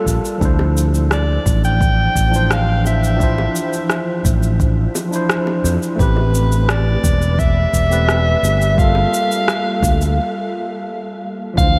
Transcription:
Already playing: tine electric piano G3 A#3 F4 A4
0.06 fretless electric bass A#1, kick, cabasa
0.25 cabasa
0.38 fretless electric bass D2, tine electric piano F3 D4, kick
0.42 tine electric piano E4 C5, cabasa
0.59 high bongo
0.77 cabasa
0.95 cabasa
1.11 soprano saxophone D5, cross-stick, cabasa
1.46 fretless electric bass A1, kick, cabasa
1.64 soprano saxophone G5, cabasa
1.81 kick, cabasa
2.16 fretless electric bass A1, kick, cabasa
2.29 tine electric piano F3 D4
2.34 tine electric piano E3 C5, cabasa
2.51 soprano saxophone F5, cross-stick, cabasa
2.85 soprano saxophone E5, high bongo, cabasa
3.04 cabasa
3.16 tine electric piano F3 D4, kick
3.21 tine electric piano E4 C5, cabasa
3.38 high bongo
3.56 cabasa
3.73 cabasa
3.90 cross-stick, cabasa
4.25 fretless electric bass A1, kick, cabasa
4.43 cabasa
4.60 kick, cabasa
4.95 high bongo, cabasa
5.08 tine electric piano F3 D4
5.13 tine electric piano E4 C5, cabasa
5.29 cross-stick, cabasa
5.47 high bongo
5.64 fretless electric bass F2, cabasa
5.83 cabasa
5.96 fretless electric bass A1, tine electric piano A3 C4, kick
6.00 tine electric piano G4 B4, soprano saxophone B4, cabasa
6.17 high bongo
6.35 cabasa
6.52 cabasa
6.69 soprano saxophone D5, cross-stick, cabasa
7.04 fretless electric bass E1, kick, cabasa
7.22 cabasa
7.39 soprano saxophone E5, kick, cabasa
7.73 fretless electric bass E1, kick, cabasa
7.89 tine electric piano A3 C4 G4 B4, cabasa
8.08 cross-stick, cabasa
8.43 fretless electric bass G1, high bongo, cabasa
8.62 cabasa
8.74 tine electric piano G3 A#3, kick
8.79 tine electric piano F4 A4, soprano saxophone F5, cabasa
8.95 high bongo
9.14 cabasa
9.32 cabasa
9.48 cross-stick, cabasa
9.83 fretless electric bass D2, kick, cabasa
10.01 cabasa
11.54 fretless electric bass D2, tine electric piano F3 D4, kick
11.58 tine electric piano E3 C5, soprano saxophone F5, cabasa

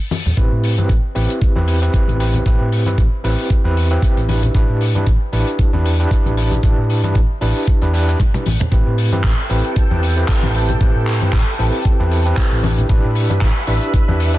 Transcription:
0.11 open hi-hat, high conga
0.26 fingered electric bass E2, low conga
0.37 fingered electric bass A1, tine electric piano C4 E4 G4 B4, kick
0.52 fingered electric bass A2
0.64 open hi-hat
0.77 fingered electric bass G2, tine electric piano C4 E4 G4 B4, closed hi-hat, high conga
0.89 fingered electric bass A1, kick, closed hi-hat
1.15 fingered electric bass A1, tine electric piano C4 E4 G4 B4, open hi-hat
1.30 closed hi-hat
1.42 muted fingered electric bass stroke, kick, closed hi-hat
1.55 fingered electric bass E2, tine electric piano C4 E4 G4 B4, high conga
1.68 open hi-hat
1.82 tine electric piano C4 E4 G4 B4, closed hi-hat
1.94 kick, closed hi-hat
2.08 fingered electric bass A1, closed hi-hat, high conga
2.19 tine electric piano C4 E4 G4 B4, open hi-hat
2.34 closed hi-hat, high conga, low conga
2.46 fingered electric bass A1, tine electric piano C4 E4 G4 B4, kick, closed hi-hat
2.60 fingered electric bass A2
2.72 open hi-hat
2.86 fingered electric bass G2, tine electric piano C4 E4 G4 B4, closed hi-hat, high conga
2.98 fingered electric bass A1, kick, closed hi-hat
3.24 fingered electric bass A1, tine electric piano C4 E4 G4 B4, open hi-hat
3.38 open hi-hat
3.50 kick, closed hi-hat
3.64 fingered electric bass E2, tine electric piano C4 E4 G4 B4
3.77 open hi-hat
3.91 tine electric piano C4 E4 G4 B4, closed hi-hat
4.02 kick, closed hi-hat
4.17 fingered electric bass A1, closed hi-hat
4.28 tine electric piano D4 E4 G4 B4, open hi-hat, high conga
4.43 closed hi-hat, low conga
4.54 fingered electric bass A1, tine electric piano D4 E4 G4 B4, kick, closed hi-hat
4.69 fingered electric bass A2
4.81 open hi-hat
4.95 fingered electric bass G2, tine electric piano D4 E4 G4 B4, closed hi-hat, high conga
5.06 fingered electric bass A1, kick, closed hi-hat
5.32 fingered electric bass A1, tine electric piano D4 E4 G4 B4, open hi-hat
5.48 closed hi-hat
5.59 muted fingered electric bass stroke, kick, closed hi-hat
5.73 fingered electric bass E2, tine electric piano D4 E4 G4 B4, high conga
5.86 open hi-hat
5.99 tine electric piano D4 E4 G4 B4, closed hi-hat
6.11 kick, closed hi-hat
6.26 fingered electric bass A1, closed hi-hat, high conga
6.37 tine electric piano D4 E4 G4 B4, open hi-hat
6.52 closed hi-hat, high conga, low conga
6.63 fingered electric bass A1, tine electric piano D4 E4 G4 B4, kick, closed hi-hat
6.78 fingered electric bass A2
6.90 open hi-hat
7.04 fingered electric bass G2, tine electric piano D4 E4 G4 B4, closed hi-hat, high conga
7.15 fingered electric bass A1, kick, closed hi-hat
7.41 fingered electric bass A1, tine electric piano D4 E4 G4 B4, open hi-hat
7.56 open hi-hat
7.67 kick, closed hi-hat
7.82 fingered electric bass E2, tine electric piano D4 E4 G4 B4, closed hi-hat
7.93 tine electric piano D4 E4 G4 B4, open hi-hat
8.08 tine electric piano D4 E4 G4 B4, closed hi-hat
8.20 kick, closed hi-hat, high tom
8.34 tine electric piano D4 E4 G4 B4, closed hi-hat, high tom
8.46 fingered electric bass A1, open hi-hat, high conga
8.60 closed hi-hat, mid tom, low conga
8.71 fingered electric bass A1, tine electric piano C4 E4 G4 B4, analog synth pad A4 G5, kick, closed hi-hat
8.87 fingered electric bass A2
8.98 open hi-hat
9.12 fingered electric bass G2, tine electric piano C4 E4 G4 B4, closed hi-hat, high conga
9.24 fingered electric bass A1, kick, clap, closed hi-hat
9.50 fingered electric bass A1, tine electric piano C4 E4 G4 B4, open hi-hat
9.65 closed hi-hat
9.76 muted fingered electric bass stroke, kick, closed hi-hat
9.90 fingered electric bass E2, tine electric piano C4 E4 G4 B4, high conga
10.03 open hi-hat
10.17 tine electric piano C4 E4 G4 B4, closed hi-hat
10.28 kick, clap, closed hi-hat
10.43 fingered electric bass A1, closed hi-hat, high conga
10.54 tine electric piano C4 E4 G4 B4, open hi-hat
10.69 closed hi-hat, high conga, low conga
10.80 fingered electric bass A1, tine electric piano C4 E4 G4 B4, kick, closed hi-hat
10.95 fingered electric bass A2
11.07 clap, open hi-hat
11.21 fingered electric bass G2, tine electric piano C4 E4 G4 B4, closed hi-hat, high conga
11.33 fingered electric bass A1, kick, clap, closed hi-hat
11.59 fingered electric bass A1, tine electric piano C4 E4 G4 B4, open hi-hat
11.74 open hi-hat
11.85 kick, closed hi-hat
11.99 fingered electric bass E2, tine electric piano C4 E4 G4 B4
12.11 open hi-hat
12.25 tine electric piano C4 E4 G4 B4, closed hi-hat
12.37 kick, clap, closed hi-hat
12.51 fingered electric bass A1, closed hi-hat
12.63 tine electric piano D4 E4 G4 B4, analog synth pad B4 E5, open hi-hat, high conga
12.79 closed hi-hat, low conga
12.89 fingered electric bass A1, tine electric piano D4 E4 G4 B4, kick, closed hi-hat
13.04 fingered electric bass A2
13.15 open hi-hat
13.30 fingered electric bass G2, tine electric piano D4 E4 G4 B4, closed hi-hat, high conga
13.41 fingered electric bass A1, kick, clap, closed hi-hat
13.67 fingered electric bass A1, tine electric piano D4 E4 G4 B4, open hi-hat
13.82 closed hi-hat
13.94 muted fingered electric bass stroke, kick, closed hi-hat
14.08 fingered electric bass E2, tine electric piano D4 E4 G4 B4, high conga
14.20 open hi-hat
14.34 tine electric piano D4 E4 G4 B4, closed hi-hat

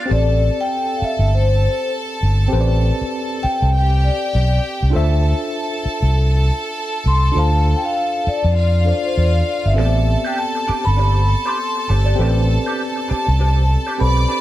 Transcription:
Already playing: clean electric guitar F4 D5
0.00 clean electric guitar D4
0.06 tine electric piano C4 G4 A4, violin section A4 A5
0.11 fingered electric bass A1, tine electric piano C5, vibraphone D5
0.18 tine electric piano D5
0.61 vibraphone G5
0.97 vibraphone F5
1.02 vibraphone E5, muted fingered electric bass stroke
1.19 fingered electric bass G1
1.34 vibraphone C5
2.23 fingered electric bass G1
2.48 tine electric piano C4 G4 A4
2.53 fingered electric bass A1, tine electric piano B4 C5
2.61 tine electric piano D5
3.01 muted fingered electric bass stroke
3.43 vibraphone G5, muted fingered electric bass stroke
3.62 fingered electric bass C2
3.74 violin section G4 G5
4.04 vibraphone D5
4.35 fingered electric bass B1
4.83 fingered electric bass C2
4.90 tine electric piano D4 F4 A4
4.95 fingered electric bass D2, violin section A4 A5, tine electric piano C5 E5
5.85 muted fingered electric bass stroke
6.02 fingered electric bass C2
7.06 fingered electric bass C2, vibraphone C6
7.32 fingered electric bass D2, tine electric piano D4 F4 A4
7.37 tine electric piano C5 F5, vibraphone A5
7.77 vibraphone G5
7.85 vibraphone F5
8.27 vibraphone D5, muted fingered electric bass stroke
8.44 fingered electric bass F2
8.57 violin section F4 F5
8.84 tine electric piano D4 F4 A4 C5 F5, vibraphone D5
9.06 vibraphone C5
9.17 fingered electric bass E2, vibraphone D5
9.66 fingered electric bass G1, vibraphone E5
9.74 fingered electric bass A1, tine electric piano C4 G4 A4, clean electric guitar D4
9.78 tine electric piano B3 D5, clean electric guitar G4 C5, violin section A4 A5
10.07 muted clean electric guitar stroke
10.25 clean electric guitar D4 G4 C5, vibraphone G5
10.38 vibraphone A5
10.55 muted clean electric guitar stroke
10.68 clean electric guitar D4 G4 C5, muted fingered electric bass stroke
10.85 fingered electric bass G1, vibraphone B5, muted clean electric guitar stroke
10.97 clean electric guitar D4 G4 C5
11.27 muted clean electric guitar stroke
11.46 clean electric guitar D4 G4 C5, vibraphone C6
11.59 muted clean electric guitar stroke
11.76 muted clean electric guitar stroke
11.89 fingered electric bass G1, clean electric guitar D4 G4 C5
12.05 clean electric guitar D4 G4 D5
12.15 fingered electric bass A1, tine electric piano C4 G4 A4, clean electric guitar D4
12.20 clean electric guitar G4 C5, tine electric piano B4 D5
12.49 muted clean electric guitar stroke
12.66 clean electric guitar D4 G4 C5
12.96 muted clean electric guitar stroke
13.08 clean electric guitar D4 G4 C5, muted fingered electric bass stroke
13.12 vibraphone A5
13.27 fingered electric bass C2, muted clean electric guitar stroke
13.39 clean electric guitar D4 G4 C5, vibraphone A5
13.69 muted clean electric guitar stroke
13.87 clean electric guitar D4 G4 C5
13.98 fingered electric bass B1, tine electric piano C4 G4 A4 B4 C5, violin section D5 D6, vibraphone B5, muted clean electric guitar stroke
14.17 muted clean electric guitar stroke
14.29 clean electric guitar D4 G4 C5

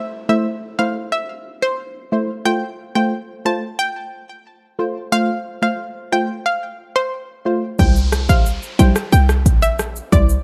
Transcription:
Already playing: downlifter
0.29 synth stab A3 E4 C5, synth pluck E5
0.79 synth stab A3 E4 C5, synth pluck F5
1.12 synth pluck E5
1.62 synth pluck C5
2.12 synth stab A3 E4 C5
2.45 synth stab A3 F4 C5, synth pluck G5
2.95 synth stab A3 F4 C5, synth pluck G5
3.45 synth stab A3 F4 C5, synth pluck A5
3.79 synth pluck G5
4.79 synth stab A3 F4 C5
5.12 synth stab A3 F4 C5, synth pluck F5
5.62 synth stab A3 F4 C5, synth pluck F5
6.12 synth stab A3 F4 C5, synth pluck G5
6.46 synth pluck F5
6.96 synth pluck C5
7.45 synth stab A3 F4 C5
7.79 808-style bass C2, synth stab G3 E4 C5, synth pluck G5, kick, downlifter, shaker
7.96 shaker
8.12 cross-stick, closed hi-hat, shaker
8.29 synth stab G3 E4 C5, synth pluck F5, kick, shaker
8.46 shaker
8.63 shaker
8.79 808-style bass A#1, synth stab G3 E4 C5, synth pluck G5, closed hi-hat, shaker
8.96 cross-stick, shaker
9.12 808-style bass C2, synth pluck G5, shaker
9.29 cross-stick, shaker
9.46 kick, closed hi-hat, shaker
9.62 808-style bass A#1, synth pluck E5, shaker
9.79 cross-stick, shaker
9.96 shaker
10.12 808-style bass C2, synth stab G3 E4 C5, synth pluck D5, kick, closed hi-hat, shaker
10.29 shaker

